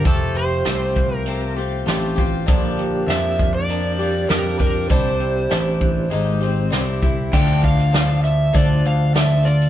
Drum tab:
CC |----------------|----------------|----------------|x---------------|
HH |x-x-x-x-x-x-x-x-|x-x-x-x-x-x-x-x-|x-x-x-x-x-x-x-x-|--xxx-x-x-x-x-xx|
SD |----o-------o---|----o-------o---|----o-------o---|----o-------o---|
BD |o-----o-------o-|o-----o-------o-|o-----o-------o-|o-o-----o-------|